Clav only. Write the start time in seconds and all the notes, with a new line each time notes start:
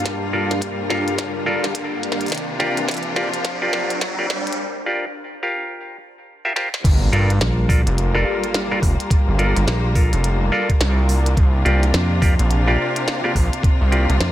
0.33 F4 A4 A#4 D5
0.90 F4 A4 A#4 F5
1.46 F4 A4 A#4 D5
2.59 F4 G4 A#4 D5
3.16 F4 G4 A#4 D5
3.62 F4 G4 A#4 D5
4.18 F4 G4 A#4 D5
4.86 F4 G4 A#4 D5
5.43 F4 G4 A#4 F5
6.45 F4 G4 A#4 E5
6.56 F4 G4 A#4 C5
7.12 F4 A4 A#4 D5
7.69 F4 A4 A#4 D5
8.15 F4 A4 A#4 D5
8.71 F4 A4 A#4 D5
9.39 F4 A4 A#4 D5
9.95 F4 A4 A#4 F5
10.52 F4 A4 A#4 D5
11.65 F4 G4 A#4 D5
12.22 F4 G4 A#4 D5
12.67 F4 G4 A#4 D5
13.24 F4 G4 A#4 D5
13.92 F4 G4 A#4 D5